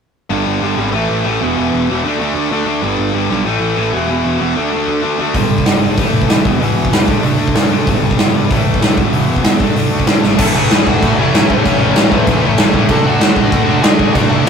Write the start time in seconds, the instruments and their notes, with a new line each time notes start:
0.30 picked electric bass G1, distorted electric guitar G2 D3 G3
0.46 picked electric bass G1
0.61 picked electric bass G1, distorted electric guitar G2 D3 G3
0.76 picked electric bass G#1, distorted electric guitar G2 D3 G3
0.91 picked electric bass A1, distorted electric guitar A2 E3 A3
1.09 picked electric bass A1
1.24 picked electric bass A1, distorted electric guitar A2 E3 A3
1.41 picked electric bass E1, distorted electric guitar E2 B2 E3
1.57 picked electric bass E1, distorted electric guitar E2 B2 E3
1.73 picked electric bass E1
1.89 picked electric bass E1, distorted electric guitar E2 B2 E3
2.03 picked electric bass D2, distorted electric guitar D3 A3 D4
2.19 picked electric bass D2, distorted electric guitar D3 A3 D4
2.35 picked electric bass D2
2.51 picked electric bass D2, distorted electric guitar D3 A3 D4
2.66 picked electric bass D2, distorted electric guitar D3 A3 D4
2.82 picked electric bass G1, distorted electric guitar G2 D3 G3
2.98 picked electric bass G1
3.13 picked electric bass G1, distorted electric guitar G2 D3 G3
3.29 picked electric bass B1, distorted electric guitar G2 D3 G3
3.45 picked electric bass A1, distorted electric guitar A2 E3 A3
3.60 picked electric bass A1
3.75 picked electric bass A1, distorted electric guitar A2 E3 A3
3.92 picked electric bass E1, distorted electric guitar E2 B2 E3
4.07 picked electric bass E1, distorted electric guitar E2 B2 E3
4.25 picked electric bass E1
4.39 picked electric bass E1, distorted electric guitar E2 B2 E3
4.54 picked electric bass D2, distorted electric guitar D3 A3 D4
4.70 picked electric bass D2, distorted electric guitar D3 A3 D4
4.75 distorted electric guitar D3
4.88 picked electric bass D2
5.02 picked electric bass D2, distorted electric guitar D3 A3 D4
5.18 picked electric bass D2, distorted electric guitar D3 A3 D4
5.34 picked electric bass G1, distorted electric guitar G2 D3 G3, kick, open hi-hat
5.50 picked electric bass G1
5.58 kick
5.65 picked electric bass G1, distorted electric guitar G2 D3 G3, snare, open hi-hat
5.82 picked electric bass G1, distorted electric guitar G2 D3 G3
5.97 picked electric bass A1, distorted electric guitar A2 E3 A3, kick, open hi-hat
6.13 picked electric bass A1
6.22 kick
6.28 picked electric bass A1, distorted electric guitar A2 E3 A3, snare, open hi-hat
6.45 picked electric bass E1, distorted electric guitar E2 B2 E3, kick
6.59 picked electric bass E1, distorted electric guitar E2 B2 E3, open hi-hat
6.74 picked electric bass E1
6.85 kick
6.90 picked electric bass E1, distorted electric guitar E2 B2 E3, snare, open hi-hat
7.08 picked electric bass D2, distorted electric guitar D3 A3 D4, kick
7.22 picked electric bass D2, distorted electric guitar D3 A3 D4, open hi-hat
7.38 picked electric bass D2
7.48 kick
7.54 picked electric bass D2, distorted electric guitar D3 A3 D4, snare, open hi-hat
7.69 picked electric bass D2, distorted electric guitar D3 A3 D4
7.73 distorted electric guitar D3 A3
7.86 picked electric bass G1, distorted electric guitar G2 D3 G3, kick, open hi-hat
8.03 picked electric bass G1
8.11 kick
8.18 picked electric bass G1, distorted electric guitar G2 D3 G3, snare, open hi-hat
8.34 picked electric bass G1, distorted electric guitar G2 D3 G3
8.50 picked electric bass A1, distorted electric guitar A2 E3 A3, kick, open hi-hat
8.65 picked electric bass A1
8.74 kick
8.80 picked electric bass D#2, distorted electric guitar A2 E3 A3, snare, open hi-hat
8.97 picked electric bass E1, distorted electric guitar E2 B2 E3, kick
9.11 picked electric bass E1, distorted electric guitar E2 B2 E3, open hi-hat
9.28 picked electric bass E1
9.36 kick
9.44 picked electric bass C#2, distorted electric guitar E2 B2 E3, snare, open hi-hat
9.60 picked electric bass D2, distorted electric guitar D3 A3 D4, kick
9.75 picked electric bass D2, distorted electric guitar D3 A3 D4, open hi-hat
9.92 picked electric bass D2
10.00 kick
10.07 picked electric bass D2, distorted electric guitar D3 A3 D4, snare, open hi-hat
10.23 picked electric bass G#1, distorted electric guitar D3 A3 D4, snare
10.38 picked electric bass A1, distorted electric guitar A2 E3 A3, overdriven electric guitar C#4 E4, lead electric guitar A4 A5, kick, crash
10.54 picked electric bass A1, distorted electric guitar A2 E3 A3, lead electric guitar G#4 G#5
10.70 picked electric bass A1, distorted electric guitar A2 E3 A3, snare, crash
10.86 picked electric bass E1, distorted electric guitar A2 E3 A3, lead electric guitar F#4 F#5, kick
11.03 picked electric bass A1, distorted electric guitar A2 E3 A3, kick, crash
11.18 picked electric bass A1, distorted electric guitar A2 E3 A3, overdriven electric guitar C#4 E4, lead electric guitar E4 E5
11.34 picked electric bass A1, distorted electric guitar A2 E3 A3, overdriven electric guitar C#4 E4, snare, crash
11.49 picked electric bass A2, distorted electric guitar A2 E3 A3, lead electric guitar C#4 C#5, kick
11.65 picked electric bass A1, distorted electric guitar A2 E3 A3, overdriven electric guitar C#4 E4, kick, crash
11.80 picked electric bass A1, distorted electric guitar A2 E3 A3
11.96 picked electric bass A1, distorted electric guitar A2 E3 A3, snare, crash
12.12 picked electric bass E1, distorted electric guitar A2 E3 A3, lead electric guitar B4, kick
12.27 picked electric bass A1, distorted electric guitar A2 E3 A3, kick, crash
12.41 picked electric bass A1, overdriven electric guitar C#4 E4
12.45 distorted electric guitar A2 E3 A3
12.58 picked electric bass A1, distorted electric guitar A2 E3, overdriven electric guitar C#4 E4, snare, crash
12.62 distorted electric guitar A3
12.73 picked electric bass A2, distorted electric guitar A2 E3 A3, kick
12.89 picked electric bass D2, distorted electric guitar D3 A3 D4, overdriven electric guitar F#4, lead electric guitar A4 A5, kick, crash
13.04 picked electric bass D2, distorted electric guitar D3 A3 D4, lead electric guitar F#4 F#5
13.20 picked electric bass D2, distorted electric guitar D3 A3 D4, snare, crash
13.36 picked electric bass A1, distorted electric guitar D3 A3 D4, lead electric guitar F#4 F#5, kick
13.51 picked electric bass D2, distorted electric guitar D3 A3 D4, kick, crash
13.66 picked electric bass D2, distorted electric guitar D3 A3 D4, overdriven electric guitar F#4
13.82 picked electric bass D2, distorted electric guitar D3 A3 D4, lead electric guitar G#4 G#5, snare, crash
13.87 overdriven electric guitar F#4
13.98 picked electric bass D3, distorted electric guitar D3 A3 D4, kick
14.13 picked electric bass D2, distorted electric guitar D3 A3 D4, lead electric guitar F#4 F#5, kick, crash
14.19 overdriven electric guitar F#4
14.29 picked electric bass D2, distorted electric guitar D3 A3 D4, lead electric guitar E4 E5
14.43 picked electric bass D2, distorted electric guitar D3 A3 D4